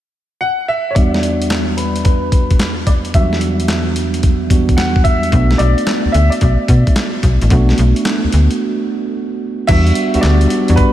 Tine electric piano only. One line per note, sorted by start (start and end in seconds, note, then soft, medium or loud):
0.95 3.10 E2 medium
0.95 3.10 G3 medium
0.95 3.10 B3 medium
0.95 3.11 D4 medium
0.95 3.11 F#4 medium
3.13 4.47 E2 medium
3.13 3.23 F#3 soft
3.13 4.48 B3 medium
3.13 4.48 D4 medium
3.13 4.48 F#4 medium
3.20 4.49 G3 medium
4.50 5.32 E2 soft
4.50 5.32 G3 soft
4.50 5.31 B3 medium
4.50 5.32 D4 medium
4.50 5.32 F#4 medium
5.31 7.46 A3 medium
5.31 7.46 B3 medium
5.31 7.47 D4 medium
5.31 7.47 F#4 medium
7.50 9.64 A3 medium
7.50 9.65 B3 medium
7.50 9.65 D4 medium
7.50 9.65 F#4 medium
9.69 9.96 G3 medium
9.69 9.96 B3 medium
9.69 9.96 D4 medium
9.69 9.96 F#4 medium
10.14 10.47 G3 medium
10.14 10.47 B3 medium
10.14 10.48 D4 medium
10.14 10.48 F#4 medium
10.69 10.93 G3 medium
10.69 10.93 B3 medium
10.69 10.93 D4 medium
10.69 10.93 F#4 medium